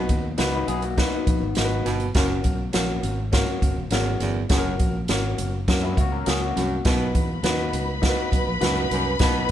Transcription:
Already playing: B2 D#4 F#4 B4
0.09 D#2, kick, closed hi-hat
0.38 C#2 D#4 F#4 B4, snare, closed hi-hat
0.52 D#4 B4
0.68 B1 B3 G#4, closed hi-hat
0.82 A#3 F#4, closed hi-hat
0.97 F#3 D#4 F#4 B4, kick, snare, closed hi-hat
1.12 D#3 B3
1.27 A#1, kick, closed hi-hat
1.42 G#1
1.55 G#1 D#4 F#4 A#4, snare, closed hi-hat
1.65 B4
1.85 G1 B2, snare, closed hi-hat
2.00 closed hi-hat
2.15 F#1 F#2 C#4 F#4 A#4, kick, snare, closed hi-hat
2.44 B1, kick, closed hi-hat
2.73 A#1 C#4 F#4 A#4, snare, closed hi-hat
3.03 G#1, closed hi-hat
3.32 C#4 F#4 A#4, kick, snare, closed hi-hat
3.62 F#1, kick, closed hi-hat
3.76 E1
3.91 G#1 E2 C#4 F#4 A#4, snare, closed hi-hat
4.20 G1 E2, snare, closed hi-hat
4.49 F#1 F#2 C#4 F#4 G#4, kick, snare, closed hi-hat
4.57 A#4
4.79 A#1, kick, closed hi-hat
5.08 G#1 C#4 F#4 A#4, snare, closed hi-hat
5.38 F#1, closed hi-hat
5.68 F#2 C#4 F#4 A#4, kick, snare, closed hi-hat
5.82 G#3 E4
5.97 C#2 A#3 F#4, kick, closed hi-hat
6.12 C#4 A#4
6.26 C#2 C#4 F#4 G#4 A#4, snare, closed hi-hat
6.41 A#3 F#4
6.56 C2 F#2, snare, closed hi-hat
6.85 B1 B2 D#4 F#4 B4 B5, kick, snare, closed hi-hat
7.14 E2, kick, closed hi-hat
7.43 D#2 C#4 F#4 B4, snare, closed hi-hat
7.50 D#4
7.73 C#2, closed hi-hat
8.02 D#4 F#4 A#4, kick, snare, closed hi-hat
8.09 B4
8.32 B1, kick, closed hi-hat
8.47 A#1
8.61 C#2 F#2 D#4 F#4 B4, snare, closed hi-hat
8.91 C2 F#2, closed hi-hat
9.19 B1 B2 D#4 F#4 B4, kick, snare, closed hi-hat

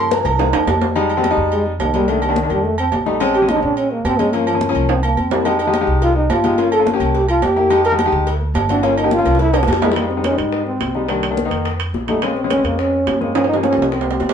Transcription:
Already playing: G2 C#3 F3 A#3 C6
0.11 A#5, cowbell, high bongo, high conga, low timbale
0.25 C2 A#5, cowbell, high bongo, high conga, low agogo
0.39 E3 G#3 A#3, cowbell, low bongo, high conga, high timbale
0.53 E2, high conga, high timbale, low agogo
0.67 F2, cowbell, high conga, low timbale, low agogo
0.81 low bongo, high conga, low timbale
0.96 G3 G#3 D#4, low agogo
1.10 high conga, low agogo
1.17 G3 G#3 C4
1.24 high conga, low timbale, low agogo
1.31 G3 G#3 D#4
1.37 F2, high conga
1.52 G#3, high conga, low agogo
1.66 C3, high conga
1.79 C2 D#3, high conga, low timbale, low agogo
1.94 G3 G#3 A#3, high conga, low agogo
2.08 D#3 A3 A#3 D4, high conga, low agogo
2.22 C3, high conga, low agogo
2.29 D#3 A#3 D4
2.36 D#3, high conga, low timbale
2.43 D#3 A#3 D4
2.50 F2 G3, high conga, low agogo
2.65 A3, high conga
2.78 C4, high conga, low agogo
2.92 A#1, high conga, low timbale, low agogo
3.06 G3 A3 D#4, high conga
3.20 G#3 C4 C#4, high conga, low agogo
3.34 G4, high conga, low agogo
3.42 G#3 C4 C#4
3.48 D#4, high conga, low timbale, low agogo
3.56 G#3 C4 C#4
3.62 A#2 D4, high conga
3.77 C#4, high conga, low agogo
3.91 A#3, high conga
4.05 G2 C4, high conga, low timbale, low agogo
4.19 G#3 C4 C#4, high conga, low agogo
4.33 F3 A#3 C#4, high conga, low agogo
4.47 F3, high conga, low agogo
4.54 F3 A#3 C#4
4.61 high conga, low timbale
4.69 F3 A#3 C#4
4.75 C2, high conga, low agogo
4.89 C4, high conga, high timbale
5.03 A#3, high conga, low agogo
5.17 F2 C4, high conga, low agogo
5.31 G3 A#3 E4, high conga, low timbale
5.45 G#3 D#4 G4, cowbell, high conga, low agogo
5.59 D#4, cowbell, high conga, low agogo
5.67 G#3 D#4 G4
5.74 cowbell, high conga, low timbale, low agogo
5.81 G#3 D#4 G4
5.87 C2, high conga
6.02 F4, cowbell, high conga, low agogo
6.16 D#4, high conga
6.29 G1 F4, cowbell, high conga, low timbale, low agogo
6.44 G#3 D#4 G4, high conga, low agogo
6.58 A#3 C#4 F4, cowbell, high conga, low agogo
6.72 A4, high conga, low agogo
6.79 A#3 C#4 F4
6.86 cowbell, high conga, low timbale
6.94 A#3 C#4 G4
7.00 C2, cowbell, high conga, low agogo
7.14 G4, cowbell, high conga
7.29 F4, high conga, low agogo
7.42 F2 G4, cowbell, high conga, low timbale, low agogo
7.56 A#3 E4 G4, high conga
7.70 G#3 D#4 G4, cowbell, high conga, low agogo
7.85 A#4, cowbell, high conga, low agogo
7.92 G#3 D#4 G4
7.99 cowbell, high conga, low timbale, low agogo
8.06 G#3 D#4 G4
8.12 D2, high conga
8.27 cowbell, high conga, low agogo
8.41 high conga
8.54 G1, cowbell, high conga, low timbale, low agogo
8.69 C4 D4 E4 F#4, high conga, low agogo
8.83 A#3 C#4 F4, cowbell, high conga, low agogo
8.97 D#4, high conga, low agogo
9.04 A#3 C#4 G4
9.11 F4, cowbell, high conga, low timbale
9.19 A#3 C#4 F4
9.25 C2, cowbell, high bongo, high conga, low agogo
9.35 high bongo
9.39 E4, cowbell, high conga
9.53 high bongo, high conga, high timbale, low agogo
9.63 low bongo
9.67 F2, cowbell, high conga, low timbale, low agogo
9.73 low bongo
9.82 G3 G#3 A#3 E4, high conga, low timbale
9.91 low bongo
9.96 G3 G#3 A#3 D#4, high bongo, high conga, high timbale
10.10 C4, high bongo, high conga
10.17 G3 G#3 D#4
10.24 C#4, high bongo, high conga, high timbale
10.31 G3 G#3 D#4
10.38 G#2 D#4, high bongo, high conga, high timbale
10.52 high bongo, high conga
10.66 C4, high conga
10.80 C2, high bongo, low bongo, high conga, high timbale
10.95 G3 G#3 D#4, high bongo
11.09 D#3 G3 A#3 D4, high bongo, high conga, high timbale
11.23 high bongo, high conga, high timbale
11.31 D#3 A#3 D4
11.37 high bongo, high conga
11.45 D#3 A#3 D#4
11.51 F2, high bongo, high timbale
11.65 high bongo, high conga, high timbale
11.80 high conga, high timbale
11.93 A#1, high bongo, low bongo, high conga
12.08 G3 A3 D#4, high bongo, high conga, high timbale
12.22 G#3 A#3 C4 C#4, high bongo, high conga, high timbale
12.37 C4, high bongo, high conga
12.44 G#3 C4 C#4
12.50 C#4, high bongo, high conga, high timbale
12.58 G#3 C4 C#4
12.64 F2 A#3, high bongo, high timbale
12.79 C#4, high bongo, high conga
12.93 high conga
13.07 G2, high bongo, low bongo, high conga, high timbale, low timbale
13.21 G#3 A#3 C4 C#4, high bongo, high conga
13.34 F3 A#3 C#4, high bongo, high conga, high timbale
13.44 high timbale
13.49 D#4, high bongo, high conga
13.54 F3 A#3 C#4, low timbale
13.62 C#4, high bongo, high conga, high timbale
13.70 F3 A#3 C#4, low timbale
13.77 C2, high bongo, high conga
13.82 low timbale
13.91 C4, high bongo, high conga
14.01 low timbale
14.06 high conga
14.11 low timbale
14.20 F2, high bongo, low bongo, high conga, low timbale
14.29 low timbale

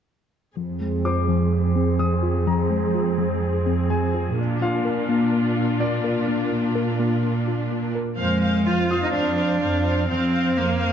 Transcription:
0.57 F2 F3 C4 G#4
0.81 G#3
1.05 F4 C5 D6
1.28 F3
1.76 C4
1.99 F3 D#6
2.23 F4
2.47 F3 A#5
2.71 G#3
2.94 F4
3.18 F3
3.66 C4
3.90 F3 G#5
4.14 F4
4.37 A#2 A#3 D4 F4
4.62 D4 F4 F5
4.85 A#4
5.09 A#3
5.57 F4
5.80 A#3 D5
6.04 A#4
6.28 A#3
6.51 D4
6.75 A#4
6.99 A#3
7.48 F4
7.71 A#3
7.95 A#4
8.18 F2 G#3 C5 F5
8.42 C5 F5
8.66 F2 F4 C5 F5
8.90 F4 C5 F5 D#6
9.03 D#4
9.13 F2 D4 C5 F5
9.37 C5 F5
9.61 F2 C5 F5
9.84 C5 F5
10.08 F2 C4 C5 F5
10.33 C5 F5
10.56 F2 A#3 C5 F5
10.80 C5 F5

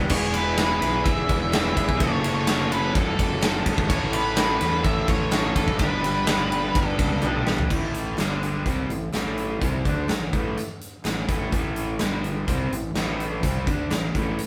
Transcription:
Already playing: G3 B3
0.10 E1 E2 B2 E3 B3 E4 C#5, kick, crash
0.14 G#4
0.33 E4 G#4 B4, ride
0.37 E3 B3
0.57 E2 B2 E3 B3 E4 G#4, snare, clap, ride
0.81 B1 E3 B3 E4 G#4, snare, ride
1.04 E1 E3 B3 E4 E5, kick, ride
1.09 G#4
1.29 E1 E3 B3 E4 G#4, kick, ride
1.51 E3 B3 E4 E5, snare, clap, ride
1.56 G#4
1.76 E1 E3 B3 E4 G#4, kick, ride
1.89 B1, kick
1.99 F#1 F#2 C#3 F#3 A3 C#4 C#5, kick, ride
2.03 F#4 A4
2.23 A3 C#4 F#4 A4, ride
2.28 F#3
2.34 C#5
2.47 F#2 C#3 F#3 A3 C#4 F#4 A4, snare, clap, ride
2.71 F#3 A3 C#4 F#4 A4 B4, ride
2.95 F#1 F#3 A3 C#4 F#4 A4, kick, ride
3.18 F#1 F#3 A3 C#4 F#4, kick, ride
3.42 F#3 A3 C#4 F#4 A4, snare, clap, ride
3.65 F#1 A3 C#4 F#4 A4, kick, ride
3.69 F#3
3.78 G#1, kick
3.89 A1 A2 E3 A3 C#4 E4 C#5, kick, ride
3.93 A4
4.13 A3 C#4 E4 A4 B4, ride
4.37 A2 E3 A3 C#4 E4 A4, snare, clap, ride
4.59 E2 A3 C#4 E4 A4, snare, ride
4.84 A1 E3 A3 C#4 E4 E5, kick, ride
5.07 A1 A2 E3 A3 C#4 E4 C#5, kick, ride
5.31 E3 A3 C#4 E4, snare, clap, ride
5.35 A4
5.55 A1 A3 C#4 E4 A4, kick, ride
5.68 F#1, kick
5.79 G1 G2 D3 G3 B3 D4 G4 B4, kick, ride
6.02 G3 B3 D4 G4, ride
6.26 G2 D3 G3 B3 D4 G4, snare, clap, ride
6.49 G3 B3 D4 G4, ride
6.73 G1 D3 G3 B3 D4, kick, ride
6.87 A4
6.97 C#2 G2 D3 G3 B3 D4, kick, ride
7.21 B1 D3 G3 B3 D4, clap, high tom
7.25 G4
7.45 A1 G3 B3 D4 G4, snare
7.58 floor tom
7.69 A1 A2 E3 A3, kick, crash
7.94 closed hi-hat
8.18 G1 G2 D3 G3, snare, clap, closed hi-hat
8.43 closed hi-hat
8.65 C2 C3 G3 C4, kick, closed hi-hat
8.89 A1 A2 E3, closed hi-hat
9.13 A1 A2 E3 A3, snare, clap, closed hi-hat
9.38 closed hi-hat
9.61 C2 C3 G3 C4, kick, closed hi-hat
9.85 D2 D3 A3 D4, kick, closed hi-hat
10.08 A1 A2 E3, snare, clap, closed hi-hat
10.33 A1 A2 E3 A3, kick, closed hi-hat
10.57 closed hi-hat
10.81 closed hi-hat
11.04 A1 A2 E3, snare, clap, closed hi-hat
11.28 A1 A2 E3 A3, kick, closed hi-hat
11.52 A1 A2 E3 A3, kick, closed hi-hat
11.76 closed hi-hat
11.99 G1 G2 D3 G3, snare, clap, closed hi-hat
12.24 closed hi-hat
12.47 C2 C3 G3 C4, kick, closed hi-hat
12.71 A1 A2 E3, closed hi-hat
12.94 A1 A2 E3 A3, snare, clap, closed hi-hat
13.20 closed hi-hat
13.43 C2 C3 G3 C4, kick, closed hi-hat
13.67 D2 D3 A3 D4, kick, closed hi-hat
13.90 A1 A2 E3, snare, clap, closed hi-hat
14.14 A1 A2 E3 A3, kick, closed hi-hat
14.39 closed hi-hat

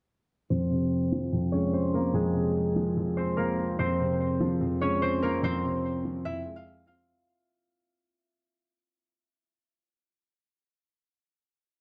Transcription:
0.50 F2 C4 C5
0.70 C3
1.12 F3
1.33 F2
1.52 G#3 C#4 C#5
1.73 C4 C5
1.94 A#3 C4 A#4
2.14 F2 G#3 G#4
2.35 C3
2.76 F3
2.97 F2
3.17 G#3 C4 C5
3.37 A#3 A#4
3.58 C4
3.79 F2 C4 C5
4.00 C3
4.40 F3
4.61 F2
4.81 G#3 C#4 C#5
5.02 C4 C5
5.22 A#3 C4 A#4
5.43 F2 C4 C5
5.64 C3
6.05 F3
6.25 F2 E4 E5
6.46 G#3
6.56 F4 F5
6.87 C4 F4 F5

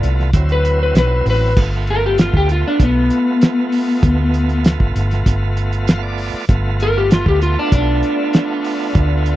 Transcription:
Already playing: A3 B3 F4 D5
0.03 C2, closed hi-hat
0.20 snare
0.33 D2 F#3 C4 E4, kick, closed hi-hat
0.49 B4, closed hi-hat
0.65 closed hi-hat
0.83 B4
0.95 B1 B4, snare, closed hi-hat
1.26 A1, open hi-hat
1.30 B4
1.56 G1 A3 B3 F4, kick, crash
1.87 A#4, closed hi-hat
2.06 G4
2.18 F4, snare, closed hi-hat
2.33 D2 G4, kick
2.49 F4, closed hi-hat
2.68 D4
2.80 B1 B3, kick, closed hi-hat
3.10 closed hi-hat
3.41 snare, closed hi-hat
3.72 open hi-hat
4.03 D2, kick, closed hi-hat
4.34 closed hi-hat
4.49 closed hi-hat
4.64 snare, closed hi-hat
4.80 G1, kick
4.95 G1, closed hi-hat
5.11 snare, closed hi-hat
5.26 G1, kick, closed hi-hat
5.57 closed hi-hat
5.73 closed hi-hat
5.87 F5, snare, closed hi-hat
6.03 D5
6.18 open hi-hat
6.34 muted fingered electric bass stroke
6.49 G1 A3 B3 F4, kick, closed hi-hat
6.80 A#4, closed hi-hat
6.98 G4
7.11 F4, snare, closed hi-hat
7.26 D2 G4, kick
7.42 F4, closed hi-hat
7.59 D4
7.72 B1 D4, kick, closed hi-hat
8.03 closed hi-hat
8.33 snare, closed hi-hat
8.64 open hi-hat
8.95 D2, kick, closed hi-hat
9.26 closed hi-hat

